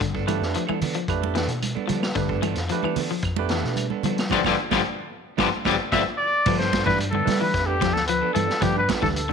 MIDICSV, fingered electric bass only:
0, 0, Header, 1, 3, 480
1, 0, Start_track
1, 0, Tempo, 538600
1, 4, Time_signature, 4, 2, 24, 8
1, 8314, End_track
2, 0, Start_track
2, 0, Title_t, "Fingered electric bass"
2, 0, Program_c, 0, 33
2, 8, Note_on_c, 0, 43, 84
2, 348, Note_off_c, 0, 43, 0
2, 361, Note_on_c, 0, 41, 80
2, 476, Note_off_c, 0, 41, 0
2, 723, Note_on_c, 0, 52, 85
2, 837, Note_off_c, 0, 52, 0
2, 965, Note_on_c, 0, 41, 98
2, 1306, Note_off_c, 0, 41, 0
2, 1313, Note_on_c, 0, 47, 71
2, 1546, Note_off_c, 0, 47, 0
2, 1677, Note_on_c, 0, 55, 93
2, 1907, Note_off_c, 0, 55, 0
2, 1921, Note_on_c, 0, 43, 88
2, 2264, Note_off_c, 0, 43, 0
2, 2280, Note_on_c, 0, 41, 75
2, 2394, Note_off_c, 0, 41, 0
2, 2647, Note_on_c, 0, 52, 97
2, 2759, Note_off_c, 0, 52, 0
2, 2876, Note_on_c, 0, 41, 95
2, 3221, Note_off_c, 0, 41, 0
2, 3248, Note_on_c, 0, 47, 70
2, 3473, Note_off_c, 0, 47, 0
2, 3605, Note_on_c, 0, 55, 88
2, 3831, Note_off_c, 0, 55, 0
2, 3839, Note_on_c, 0, 31, 79
2, 3930, Note_off_c, 0, 31, 0
2, 3956, Note_on_c, 0, 31, 79
2, 4048, Note_off_c, 0, 31, 0
2, 4200, Note_on_c, 0, 31, 86
2, 4290, Note_off_c, 0, 31, 0
2, 4797, Note_on_c, 0, 31, 96
2, 4889, Note_off_c, 0, 31, 0
2, 5042, Note_on_c, 0, 31, 91
2, 5132, Note_off_c, 0, 31, 0
2, 5277, Note_on_c, 0, 31, 86
2, 5369, Note_off_c, 0, 31, 0
2, 5758, Note_on_c, 0, 43, 102
2, 6102, Note_off_c, 0, 43, 0
2, 6121, Note_on_c, 0, 43, 91
2, 6462, Note_off_c, 0, 43, 0
2, 6468, Note_on_c, 0, 55, 87
2, 6701, Note_off_c, 0, 55, 0
2, 6721, Note_on_c, 0, 41, 100
2, 7086, Note_off_c, 0, 41, 0
2, 7086, Note_on_c, 0, 38, 96
2, 7312, Note_off_c, 0, 38, 0
2, 7445, Note_on_c, 0, 43, 98
2, 7558, Note_off_c, 0, 43, 0
2, 7680, Note_on_c, 0, 43, 87
2, 7908, Note_off_c, 0, 43, 0
2, 8043, Note_on_c, 0, 38, 85
2, 8314, Note_off_c, 0, 38, 0
2, 8314, End_track
3, 0, Start_track
3, 0, Title_t, "Muted fingered electric bass strokes"
3, 613, Note_on_c, 9, 29, 33
3, 702, Note_off_c, 9, 29, 0
3, 2536, Note_on_c, 9, 29, 37
3, 2625, Note_off_c, 9, 29, 0
3, 8314, End_track
0, 0, End_of_file